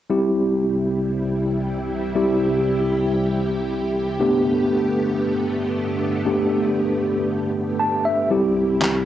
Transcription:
0.10 4.16 C2 medium
0.10 4.16 C3 medium
0.10 2.11 G3 medium
0.10 4.16 G3 medium
0.10 2.11 C4 medium
0.10 4.16 E4 medium
0.10 2.11 E4 medium
0.10 8.27 G4 medium
0.10 2.12 G4 medium
2.15 4.16 G3 medium
2.15 4.16 C4 medium
2.15 4.17 E4 medium
2.15 4.17 G4 medium
4.20 8.27 G2 medium
4.20 8.27 D3 medium
4.20 6.21 A3 medium
4.20 8.27 A3 medium
4.20 6.21 B3 medium
4.20 8.27 B3 medium
4.20 6.22 D4 medium
4.20 6.22 G4 medium
6.25 8.26 A3 medium
6.25 8.27 B3 medium
6.25 8.27 D4 medium
6.25 8.27 G4 medium
7.79 8.03 A5 medium
8.05 8.29 E5 medium
8.30 9.05 C2 medium
8.30 9.05 C3 medium
8.30 9.05 G3 medium
8.30 9.05 C4 medium
8.30 9.05 E4 medium
8.30 9.05 G4 medium
8.81 snare medium
8.81 clap loud

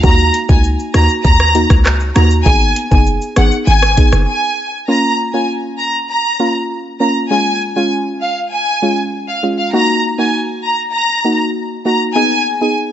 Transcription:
0.03 0.31 D#2 loud
0.03 0.20 A#3 loud
0.03 0.20 D#4 medium
0.03 0.21 F#4 loud
0.03 0.26 A#5 loud
0.03 kick loud
0.03 shaker medium
0.19 shaker medium
0.34 closed hi-hat medium
0.34 shaker medium
0.49 0.76 C#2 loud
0.49 0.66 A#3 medium
0.49 0.66 D#4 medium
0.49 0.66 F#4 medium
0.49 0.60 G#5 medium
0.49 kick loud
0.49 shaker medium
0.64 shaker medium
0.79 shaker medium
0.94 1.08 D#2 medium
0.94 1.11 A#3 medium
0.94 1.11 D#4 medium
0.94 1.11 F#4 medium
0.94 1.06 A#5 medium
0.94 cross-stick loud
0.94 closed hi-hat medium
0.94 shaker medium
1.09 shaker medium
1.25 1.66 D#2 loud
1.25 1.68 A#5 loud
1.25 kick loud
1.25 shaker medium
1.40 cross-stick loud
1.40 shaker soft
1.55 1.72 A#3 medium
1.55 1.72 D#4 medium
1.55 1.72 F#4 loud
1.55 closed hi-hat medium
1.55 shaker soft
1.70 2.12 C#2 medium
1.70 kick loud
1.70 cross-stick loud
1.70 shaker medium
1.85 cross-stick loud
1.85 clap loud
1.85 shaker medium
2.00 shaker medium
2.15 2.43 D#2 loud
2.15 2.32 A#3 medium
2.15 2.32 D#4 medium
2.15 2.33 F#4 medium
2.15 2.27 A#5 medium
2.15 cross-stick loud
2.15 closed hi-hat medium
2.15 shaker medium
2.31 shaker medium
2.45 2.73 G#1 loud
2.45 2.62 B3 loud
2.45 2.63 D#4 medium
2.45 2.63 G#4 loud
2.45 2.69 G#5 loud
2.45 kick loud
2.45 shaker medium
2.61 shaker medium
2.76 closed hi-hat medium
2.76 shaker medium
2.91 3.19 F#1 medium
2.91 3.08 B3 medium
2.91 3.08 D#4 medium
2.91 3.08 G#4 medium
2.91 3.03 G#5 medium
2.91 kick loud
2.91 shaker medium
3.07 shaker medium
3.22 shaker medium
3.36 3.51 G#1 medium
3.36 3.53 B3 medium
3.36 3.54 D#4 medium
3.36 3.54 G#4 medium
3.36 3.48 F#5 medium
3.36 cross-stick loud
3.36 closed hi-hat medium
3.36 shaker medium
3.52 shaker medium
3.67 4.09 G#1 loud
3.67 4.10 G#5 loud
3.67 shaker medium
3.82 cross-stick loud
3.82 shaker soft
3.97 4.14 B3 medium
3.97 4.14 D#4 medium
3.97 4.14 G#4 medium
3.97 kick medium
3.97 closed hi-hat medium
3.97 shaker soft
4.12 4.26 F#1 loud
4.12 cross-stick loud
4.12 shaker medium
4.28 4.71 G#5 medium
4.88 5.05 A#3 loud
4.88 5.05 C#4 medium
4.88 5.05 F4 loud
4.88 5.11 A#5 medium
5.34 5.51 A#3 medium
5.34 5.51 C#4 medium
5.34 5.51 F4 medium
5.34 5.45 G#5 medium
5.79 5.91 A#5 medium
6.10 6.52 A#5 medium
6.39 6.56 A#3 medium
6.39 6.57 C#4 medium
6.39 6.57 F4 medium
7.00 7.28 A#3 medium
7.00 7.28 C#4 medium
7.00 7.28 F4 medium
7.00 7.12 A#5 medium
7.30 7.47 G#3 medium
7.30 7.48 C#4 medium
7.30 7.48 F4 loud
7.30 7.54 G#5 medium
7.76 7.93 G#3 medium
7.76 7.93 C#4 medium
7.76 7.93 F4 medium
7.76 7.88 G#5 medium
8.22 8.33 F5 medium
8.52 8.95 G#5 medium
8.82 8.99 G#3 medium
8.82 8.99 C#4 medium
8.82 8.99 F4 medium
9.28 9.39 F5 medium
9.43 9.71 G#3 medium
9.43 9.71 C#4 medium
9.43 9.71 F4 medium
9.58 9.70 F5 medium
9.73 9.90 A#3 medium
9.73 9.90 D#4 medium
9.73 9.90 F#4 loud
9.73 9.96 A#5 loud
10.18 10.35 A#3 medium
10.18 10.36 D#4 medium
10.18 10.36 F#4 medium
10.18 10.30 G#5 medium
10.64 10.76 A#5 medium
10.94 11.37 A#5 loud
11.24 11.41 A#3 medium
11.24 11.42 D#4 medium
11.24 11.42 F#4 medium
11.85 12.13 A#3 medium
11.85 12.13 D#4 medium
11.85 12.13 F#4 medium
11.85 11.97 A#5 medium
12.15 12.32 B3 medium
12.15 12.33 D#4 medium
12.15 12.33 G#4 loud
12.15 12.38 G#5 loud
12.61 12.78 B3 medium
12.61 12.78 D#4 medium
12.61 12.78 G#4 medium
12.61 12.72 G#5 medium

